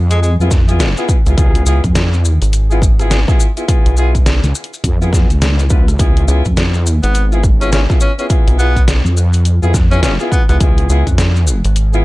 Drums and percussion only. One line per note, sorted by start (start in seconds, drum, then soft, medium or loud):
0.11 closed hi-hat medium
0.11 maracas soft
0.23 maracas medium
0.41 maracas soft
0.51 kick loud
0.51 snare soft
0.51 maracas loud
0.69 closed hi-hat soft
0.69 maracas soft
0.80 snare loud
0.80 closed hi-hat medium
0.80 maracas medium
0.97 maracas soft
1.09 kick loud
1.09 maracas loud
1.26 cross-stick soft
1.26 closed hi-hat soft
1.26 maracas soft
1.29 cross-stick soft
1.32 cross-stick soft
1.35 kick loud
1.35 cross-stick soft
1.38 cross-stick soft
1.38 closed hi-hat medium
1.38 maracas medium
1.42 cross-stick soft
1.46 cross-stick soft
1.51 cross-stick soft
1.55 closed hi-hat medium
1.66 maracas loud
1.84 kick medium
1.84 closed hi-hat soft
1.84 maracas soft
1.95 snare loud
1.95 closed hi-hat medium
1.95 maracas medium
2.14 maracas soft
2.25 maracas loud
2.42 closed hi-hat medium
2.42 maracas soft
2.53 closed hi-hat medium
2.53 maracas medium
2.71 maracas soft
2.82 kick loud
2.82 maracas loud
2.99 cross-stick soft
2.99 closed hi-hat soft
2.99 maracas soft
3.11 snare loud
3.11 closed hi-hat medium
3.11 maracas medium
3.28 kick loud
3.28 cross-stick soft
3.28 maracas soft
3.40 maracas medium
3.57 closed hi-hat soft
3.57 maracas soft
3.68 kick loud
3.68 closed hi-hat medium
3.68 maracas medium
3.86 closed hi-hat medium
3.97 maracas medium
4.15 kick medium
4.15 closed hi-hat soft
4.15 maracas soft
4.26 snare loud
4.26 closed hi-hat medium
4.26 maracas medium
4.44 closed hi-hat soft
4.44 maracas soft
4.55 maracas medium
4.64 closed hi-hat medium
4.74 maracas soft
4.84 kick medium
4.84 closed hi-hat medium
4.84 maracas medium
5.02 maracas soft
5.13 kick loud
5.13 snare soft
5.13 maracas medium
5.30 closed hi-hat soft
5.30 maracas soft
5.42 snare loud
5.42 closed hi-hat medium
5.42 maracas medium
5.59 closed hi-hat soft
5.59 maracas soft
5.70 kick loud
5.70 maracas medium
5.88 cross-stick soft
5.88 closed hi-hat soft
5.88 maracas soft
5.99 kick loud
5.99 closed hi-hat medium
5.99 maracas medium
6.17 closed hi-hat soft
6.28 maracas medium
6.45 kick medium
6.45 closed hi-hat soft
6.45 maracas soft
6.57 snare loud
6.57 closed hi-hat medium
6.57 maracas medium
6.74 maracas soft
6.86 maracas loud
7.03 closed hi-hat medium
7.03 maracas soft
7.15 closed hi-hat medium
7.15 maracas medium
7.32 maracas soft
7.43 kick loud
7.43 maracas medium
7.61 cross-stick soft
7.61 closed hi-hat soft
7.61 maracas soft
7.72 snare loud
7.72 closed hi-hat medium
7.72 maracas medium
7.90 kick loud
7.90 cross-stick soft
7.90 maracas soft
8.00 maracas medium
8.19 closed hi-hat soft
8.19 maracas soft
8.30 kick loud
8.30 closed hi-hat medium
8.30 maracas medium
8.48 closed hi-hat medium
8.59 maracas medium
8.76 kick medium
8.76 closed hi-hat soft
8.76 maracas soft
8.88 snare loud
8.88 closed hi-hat medium
8.88 maracas medium
9.06 maracas soft
9.17 maracas medium
9.33 closed hi-hat medium
9.33 maracas soft
9.45 closed hi-hat medium
9.45 maracas soft
9.63 maracas soft
9.74 kick loud
9.74 snare soft
9.74 maracas medium
9.91 closed hi-hat soft
9.91 maracas soft
10.03 snare loud
10.03 closed hi-hat medium
10.03 maracas medium
10.20 maracas soft
10.32 kick loud
10.32 maracas medium
10.49 cross-stick soft
10.49 closed hi-hat soft
10.49 maracas soft
10.60 kick loud
10.60 closed hi-hat medium
10.60 maracas medium
10.78 closed hi-hat soft
10.90 maracas medium
11.07 kick medium
11.07 closed hi-hat soft
11.07 maracas soft
11.18 snare loud
11.18 closed hi-hat medium
11.18 maracas medium
11.36 maracas soft
11.47 maracas medium
11.65 closed hi-hat medium
11.65 maracas soft
11.76 closed hi-hat medium
11.76 maracas medium
11.93 maracas soft